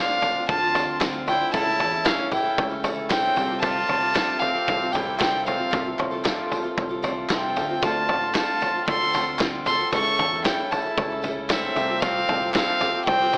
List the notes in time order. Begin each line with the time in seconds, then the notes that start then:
Already playing: D2 D3 A3 C4 D4 F4 C5 D5 F5
0.00 F4 C5
0.22 floor tom, tambourine
0.36 C4 F4 C5
0.49 D2 F4 A5, kick, floor tom, tambourine
0.62 C4 F4 C5
0.75 A3 C4 F4 C5, floor tom, tambourine
1.01 D3 A3 C4 F4 C5, kick, snare, clap, floor tom, tambourine
1.27 A3 C4 D4 E4 F4 C5 D5 G5, floor tom, tambourine
1.41 C4 F4 C5
1.52 C#2 C#3 E3 A3 C#4 E4 A4 C#5 E5 A5, kick, floor tom, tambourine
1.65 A3 C#4 E4 A4
1.80 E2, floor tom
1.91 A3 C#4 E4 A4
2.04 C#3 E3 A3 C#4 E4 A4 F5, kick, snare, clap, floor tom, tambourine
2.32 E4 G5, floor tom, tambourine
2.43 A3 C#4 E4 A4
2.58 C#2, kick, floor tom, tambourine
2.69 A3 C#4 E4 A4
2.83 A3 C#4 E4 A4, floor tom, tambourine
3.09 C#3 E3 A3 C4 C#4 E4 A4 G5, kick, snare, clap, floor tom, tambourine
3.35 C2 C3 F3 G3 C4 F4 G4 A4, floor tom, tambourine
3.39 C5
3.49 G3 C4 F4 A4
3.61 C3 F3 G3 C4 F4 A4 A5, kick, floor tom, tambourine
3.75 G3 C4 F4 A4
3.89 C2, floor tom
4.01 G3 C4 F4 A4
4.13 C3 F3 G3 C4 F4 A4, kick, snare, clap, floor tom, tambourine
4.40 C4 F5, floor tom, tambourine
4.53 G3 C4 F4 A4
4.67 C2, kick, floor tom, tambourine
4.80 G3 C4 F4 A4
4.92 G3 C4 E4 F4 A4 G5, floor tom, tambourine
5.18 C3 F3 G3 C4 F4 A4 G5, kick, snare, clap, floor tom, tambourine
5.45 C2 C3 G3 C4 F4 A4 C5 F5, floor tom, tambourine
5.57 G3 C4 F4 A4
5.71 C2 C3 F3 G3 C4 F4 A4, kick, floor tom, tambourine
5.84 G3 C4 F4 A4
5.99 C2, clap, floor tom, tambourine
6.11 G3 C4 F4 A4
6.24 C3 F3 G3 C4 F4 A4, kick, snare, clap, floor tom, tambourine
6.52 floor tom, tambourine
6.62 G3 C4 F4 A4
6.77 C2, kick, floor tom, tambourine
6.89 G3 C4 F4 A4
7.02 G3 C4 F4 A4, floor tom, tambourine
7.29 C2 C3 F3 G3 C4 F4 A4 G5, kick, snare, clap, floor tom, tambourine
7.56 D2 G3 C4 F4 A4, floor tom, tambourine
7.69 G3 C4 F4 A4
7.81 D2 D3 A3 C4 D4 F4 A4 C5 D5 A5, kick, floor tom, tambourine
7.95 C4 F4 A4
8.09 A1, floor tom
8.20 C4 F4 A4
8.34 D3 A3 C4 F4 A4 A5, kick, snare, clap, floor tom, tambourine
8.61 floor tom, tambourine
8.74 C4 F4 A4
8.87 D2 A4 C6, kick, floor tom, tambourine
9.00 C4 F4 A4
9.13 A3 C4 F4 A4, floor tom, tambourine
9.39 D3 A3 C4 F4 A4, kick, snare, clap, floor tom, tambourine
9.65 A3 C4 F4 A4 C6, floor tom, tambourine
9.79 C4 F4 A4
9.92 C#2 C#3 E3 A3 C#4 E4 A4 C#5 E5 C#6, kick, floor tom, tambourine
10.06 A3 C#4 E4 A4
10.19 E2, floor tom
10.32 A3 C#4 E4 A4
10.45 C#3 E3 A3 C#4 E4 A4 G5, kick, snare, clap, floor tom, tambourine
10.71 E4 A5, floor tom, tambourine
10.84 A3 C#4 E4 A4
10.98 C#2, kick, floor tom, tambourine
11.10 A3 C#4 E4 A4
11.23 A3 C#4 E4 A4, floor tom, tambourine
11.49 C#3 E3 A3 C4 C#4 E4 A4 E5, kick, snare, clap, floor tom, tambourine
11.74 C2 C3 F3 G3 A3 C4 F4 G4 C5, floor tom, tambourine
11.78 A4
11.89 G3 C4 F4 A4
12.01 C3 F3 G3 C4 F4 A4 F5, kick, floor tom, tambourine
12.15 G3 C4 F4 A4
12.29 C2, floor tom
12.41 G3 C4 F4 A4
12.53 C3 F3 G3 C4 F4 A4 F5, kick, snare, clap, floor tom, tambourine
12.81 floor tom, tambourine
12.94 G3 C4 F4 A4
13.05 C2 C4 G5, kick, floor tom, tambourine
13.21 G3 C4 F4 A4
13.33 G3 C4, floor tom, tambourine